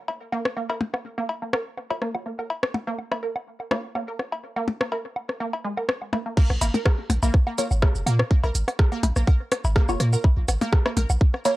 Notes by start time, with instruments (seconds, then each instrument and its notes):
0.08 cowbell
0.32 synth pluck A#3, low woodblock
0.45 cross-stick
0.57 synth pluck A#3, low woodblock
0.69 synth pluck A#4, cowbell
0.81 percussion blips
0.94 cross-stick, low woodblock
1.18 synth pluck A#3, low woodblock
1.29 cowbell
1.42 synth pluck A#3
1.53 synth pluck A#4, cross-stick, low woodblock
1.77 low woodblock
1.90 synth stab A#3 F4 C#5, cowbell
2.02 synth pluck A#3, cross-stick
2.15 synth stab A#3 F4 C#5, low woodblock
2.26 synth pluck A#3
2.39 synth pluck A#4, low woodblock
2.50 cowbell
2.63 cross-stick
2.74 percussion blips, low woodblock
2.87 synth pluck A#3
2.99 low woodblock
3.11 synth pluck A#3, cross-stick, cowbell
3.23 synth pluck A#4
3.36 low woodblock
3.60 low woodblock
3.71 synth pluck A#3, synth stab A#3 F4 C#5, cross-stick, cowbell, percussion blips
3.95 synth pluck A#3, low woodblock
4.08 synth pluck A#4
4.19 cross-stick, low woodblock
4.32 cowbell
4.56 synth pluck A#3, low woodblock
4.68 percussion blips
4.81 synth pluck A#3, cross-stick, low woodblock
4.92 synth pluck A#4, cowbell
5.16 low woodblock
5.29 cross-stick
5.40 synth pluck A#3, low woodblock
5.53 cowbell
5.64 synth pluck G#3
5.77 synth pluck A#4, low woodblock
5.89 cross-stick
6.02 low woodblock
6.13 synth pluck A#3, cowbell, percussion blips
6.26 synth pluck A#3
6.37 synth pluck A#3, kick, crash
6.50 sub bass A#1, cross-stick, low woodblock
6.61 sub bass G#1, synth pluck A#3, open hi-hat, cowbell, shaker
6.74 synth pluck A#4, open hi-hat, percussion blips
6.86 kick, cross-stick, low woodblock
7.10 sub bass A#1, open hi-hat, percussion blips, low woodblock
7.23 sub bass A#1, synth pluck A#3, cowbell, shaker
7.34 kick, cross-stick
7.47 synth pluck A#3, low woodblock
7.58 synth stab A#3 F4 C#5, synth pluck A#4, open hi-hat, shaker
7.71 sub bass G#1, low woodblock, shaker
7.82 kick, cross-stick, cowbell
7.95 sub bass F1, shaker
8.06 sub bass A#2, synth pluck A#3, open hi-hat, low woodblock
8.19 cross-stick
8.30 synth pluck A#3, kick, low woodblock
8.44 sub bass A#1, synth pluck A#4, cowbell
8.55 sub bass G#1, open hi-hat, shaker
8.68 cross-stick, open hi-hat, low woodblock
8.79 kick, cross-stick
8.92 synth pluck A#3, low woodblock
9.03 sub bass A#1, open hi-hat, cowbell, percussion blips
9.16 sub bass A#1, synth pluck A#3, cross-stick, shaker
9.27 synth pluck A#4, kick, low woodblock
9.52 cross-stick, open hi-hat, low woodblock
9.64 sub bass G#1, cowbell, shaker
9.76 synth pluck A#3, kick, cross-stick
9.89 sub bass F1, synth stab A#3 F4 C#5, low woodblock, shaker
10.00 sub bass A#2, synth pluck A#3, cross-stick, open hi-hat
10.13 synth pluck A#4, low woodblock, shaker
10.24 kick, cowbell
10.37 sub bass A#1
10.48 sub bass G#1, cross-stick, open hi-hat, low woodblock, shaker
10.61 synth pluck A#3, open hi-hat, percussion blips
10.73 kick, cross-stick, low woodblock
10.86 synth pluck A#3, cross-stick, cowbell
10.97 sub bass A#1, synth pluck A#4, open hi-hat, percussion blips
11.10 sub bass A#1, low woodblock, shaker
11.21 kick
11.34 cross-stick, low woodblock
11.45 synth pluck A#3, synth stab A#3 F4 C#5, open hi-hat, cowbell, shaker